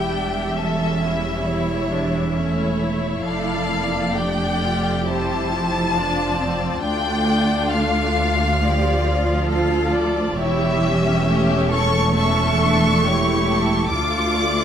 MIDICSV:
0, 0, Header, 1, 6, 480
1, 0, Start_track
1, 0, Key_signature, -1, "minor"
1, 0, Tempo, 907716
1, 1724, Time_signature, 4, 2, 24, 8
1, 2204, Tempo, 888889
1, 7861, End_track
2, 0, Start_track
2, 0, Title_t, "Violin section"
2, 0, Program_c, 0, 48
2, 0, Note_on_c, 0, 79, 58
2, 277, Note_on_c, 0, 76, 56
2, 278, Note_off_c, 0, 79, 0
2, 758, Note_on_c, 0, 73, 52
2, 762, Note_off_c, 0, 76, 0
2, 1221, Note_off_c, 0, 73, 0
2, 1228, Note_on_c, 0, 73, 53
2, 1705, Note_off_c, 0, 73, 0
2, 1709, Note_on_c, 0, 77, 62
2, 2194, Note_on_c, 0, 79, 66
2, 2197, Note_off_c, 0, 77, 0
2, 2679, Note_off_c, 0, 79, 0
2, 2688, Note_on_c, 0, 81, 69
2, 3635, Note_on_c, 0, 79, 81
2, 3645, Note_off_c, 0, 81, 0
2, 4116, Note_off_c, 0, 79, 0
2, 4126, Note_on_c, 0, 77, 67
2, 4605, Note_off_c, 0, 77, 0
2, 4611, Note_on_c, 0, 74, 59
2, 5080, Note_off_c, 0, 74, 0
2, 5551, Note_on_c, 0, 76, 80
2, 6259, Note_off_c, 0, 76, 0
2, 6279, Note_on_c, 0, 85, 82
2, 6516, Note_off_c, 0, 85, 0
2, 6523, Note_on_c, 0, 85, 85
2, 7460, Note_on_c, 0, 86, 78
2, 7462, Note_off_c, 0, 85, 0
2, 7861, Note_off_c, 0, 86, 0
2, 7861, End_track
3, 0, Start_track
3, 0, Title_t, "Violin section"
3, 0, Program_c, 1, 48
3, 0, Note_on_c, 1, 67, 41
3, 0, Note_on_c, 1, 76, 38
3, 280, Note_off_c, 1, 67, 0
3, 297, Note_on_c, 1, 69, 47
3, 533, Note_off_c, 1, 69, 0
3, 545, Note_on_c, 1, 64, 44
3, 1246, Note_off_c, 1, 64, 0
3, 1252, Note_on_c, 1, 64, 42
3, 1717, Note_off_c, 1, 64, 0
3, 1724, Note_off_c, 1, 76, 0
3, 1725, Note_on_c, 1, 74, 45
3, 1727, Note_on_c, 1, 69, 42
3, 2195, Note_off_c, 1, 74, 0
3, 2197, Note_off_c, 1, 69, 0
3, 2206, Note_on_c, 1, 67, 51
3, 2206, Note_on_c, 1, 74, 47
3, 2676, Note_off_c, 1, 74, 0
3, 2694, Note_on_c, 1, 72, 49
3, 3164, Note_off_c, 1, 67, 0
3, 3166, Note_on_c, 1, 65, 47
3, 3166, Note_on_c, 1, 74, 45
3, 3168, Note_off_c, 1, 72, 0
3, 3644, Note_off_c, 1, 65, 0
3, 3644, Note_off_c, 1, 74, 0
3, 3652, Note_on_c, 1, 74, 52
3, 3656, Note_on_c, 1, 65, 51
3, 4125, Note_off_c, 1, 74, 0
3, 4138, Note_on_c, 1, 77, 57
3, 5063, Note_off_c, 1, 65, 0
3, 5082, Note_off_c, 1, 77, 0
3, 5085, Note_on_c, 1, 69, 51
3, 5088, Note_on_c, 1, 77, 54
3, 5314, Note_on_c, 1, 74, 57
3, 5317, Note_off_c, 1, 77, 0
3, 5554, Note_on_c, 1, 73, 56
3, 5556, Note_off_c, 1, 74, 0
3, 5557, Note_on_c, 1, 67, 51
3, 5561, Note_off_c, 1, 69, 0
3, 6032, Note_off_c, 1, 67, 0
3, 6036, Note_off_c, 1, 73, 0
3, 6043, Note_on_c, 1, 73, 59
3, 6044, Note_on_c, 1, 67, 66
3, 6280, Note_off_c, 1, 67, 0
3, 6281, Note_on_c, 1, 69, 66
3, 6511, Note_off_c, 1, 69, 0
3, 6512, Note_off_c, 1, 73, 0
3, 6517, Note_on_c, 1, 69, 56
3, 6520, Note_on_c, 1, 76, 55
3, 6990, Note_off_c, 1, 69, 0
3, 7001, Note_off_c, 1, 76, 0
3, 7009, Note_on_c, 1, 73, 58
3, 7010, Note_on_c, 1, 67, 51
3, 7246, Note_off_c, 1, 73, 0
3, 7253, Note_on_c, 1, 69, 56
3, 7480, Note_off_c, 1, 69, 0
3, 7485, Note_off_c, 1, 67, 0
3, 7487, Note_on_c, 1, 69, 58
3, 7488, Note_on_c, 1, 65, 55
3, 7720, Note_off_c, 1, 69, 0
3, 7720, Note_on_c, 1, 74, 56
3, 7861, Note_off_c, 1, 65, 0
3, 7861, Note_off_c, 1, 74, 0
3, 7861, End_track
4, 0, Start_track
4, 0, Title_t, "Viola section"
4, 0, Program_c, 2, 48
4, 0, Note_on_c, 2, 55, 42
4, 52, Note_on_c, 2, 62, 43
4, 283, Note_off_c, 2, 55, 0
4, 290, Note_on_c, 2, 55, 43
4, 292, Note_on_c, 2, 61, 40
4, 293, Note_off_c, 2, 62, 0
4, 769, Note_off_c, 2, 61, 0
4, 771, Note_on_c, 2, 64, 44
4, 1009, Note_off_c, 2, 64, 0
4, 1009, Note_on_c, 2, 62, 43
4, 1227, Note_off_c, 2, 55, 0
4, 1242, Note_off_c, 2, 62, 0
4, 1248, Note_on_c, 2, 57, 43
4, 1250, Note_on_c, 2, 61, 46
4, 1485, Note_on_c, 2, 64, 43
4, 1487, Note_off_c, 2, 61, 0
4, 1717, Note_off_c, 2, 57, 0
4, 1723, Note_on_c, 2, 57, 44
4, 1959, Note_off_c, 2, 57, 0
4, 1967, Note_on_c, 2, 58, 49
4, 2205, Note_off_c, 2, 64, 0
4, 2206, Note_off_c, 2, 58, 0
4, 2207, Note_on_c, 2, 62, 51
4, 2209, Note_on_c, 2, 57, 43
4, 2441, Note_on_c, 2, 65, 47
4, 2447, Note_off_c, 2, 62, 0
4, 2681, Note_on_c, 2, 55, 49
4, 2681, Note_on_c, 2, 64, 46
4, 2682, Note_off_c, 2, 65, 0
4, 2687, Note_off_c, 2, 57, 0
4, 2922, Note_off_c, 2, 55, 0
4, 2923, Note_on_c, 2, 53, 46
4, 3152, Note_off_c, 2, 64, 0
4, 3167, Note_on_c, 2, 62, 58
4, 3404, Note_off_c, 2, 62, 0
4, 3406, Note_on_c, 2, 60, 53
4, 3636, Note_on_c, 2, 57, 55
4, 3639, Note_on_c, 2, 62, 58
4, 3642, Note_off_c, 2, 53, 0
4, 3645, Note_off_c, 2, 60, 0
4, 4117, Note_off_c, 2, 57, 0
4, 4132, Note_on_c, 2, 57, 51
4, 4585, Note_off_c, 2, 62, 0
4, 4598, Note_off_c, 2, 57, 0
4, 4609, Note_on_c, 2, 53, 54
4, 4609, Note_on_c, 2, 67, 55
4, 4844, Note_off_c, 2, 67, 0
4, 4847, Note_on_c, 2, 65, 60
4, 5559, Note_off_c, 2, 53, 0
4, 5560, Note_off_c, 2, 65, 0
4, 5565, Note_on_c, 2, 64, 60
4, 5566, Note_on_c, 2, 55, 60
4, 5798, Note_off_c, 2, 64, 0
4, 5802, Note_on_c, 2, 61, 60
4, 6037, Note_off_c, 2, 55, 0
4, 6046, Note_on_c, 2, 57, 61
4, 6514, Note_off_c, 2, 61, 0
4, 6521, Note_on_c, 2, 61, 58
4, 6755, Note_off_c, 2, 61, 0
4, 6763, Note_on_c, 2, 62, 54
4, 7004, Note_off_c, 2, 62, 0
4, 7004, Note_on_c, 2, 64, 60
4, 7473, Note_off_c, 2, 57, 0
4, 7479, Note_on_c, 2, 57, 61
4, 7482, Note_off_c, 2, 64, 0
4, 7482, Note_on_c, 2, 65, 52
4, 7861, Note_off_c, 2, 57, 0
4, 7861, Note_off_c, 2, 65, 0
4, 7861, End_track
5, 0, Start_track
5, 0, Title_t, "Cello section"
5, 0, Program_c, 3, 48
5, 0, Note_on_c, 3, 40, 43
5, 1718, Note_on_c, 3, 41, 47
5, 1722, Note_off_c, 3, 40, 0
5, 3618, Note_off_c, 3, 41, 0
5, 3639, Note_on_c, 3, 38, 51
5, 5534, Note_off_c, 3, 38, 0
5, 5548, Note_on_c, 3, 40, 62
5, 7455, Note_off_c, 3, 40, 0
5, 7479, Note_on_c, 3, 38, 60
5, 7861, Note_off_c, 3, 38, 0
5, 7861, End_track
6, 0, Start_track
6, 0, Title_t, "Double bass section"
6, 0, Program_c, 4, 48
6, 0, Note_on_c, 4, 28, 40
6, 1723, Note_on_c, 4, 29, 43
6, 1727, Note_off_c, 4, 28, 0
6, 3621, Note_off_c, 4, 29, 0
6, 3638, Note_on_c, 4, 38, 53
6, 5533, Note_off_c, 4, 38, 0
6, 5554, Note_on_c, 4, 28, 61
6, 7458, Note_off_c, 4, 28, 0
6, 7484, Note_on_c, 4, 38, 56
6, 7861, Note_off_c, 4, 38, 0
6, 7861, End_track
0, 0, End_of_file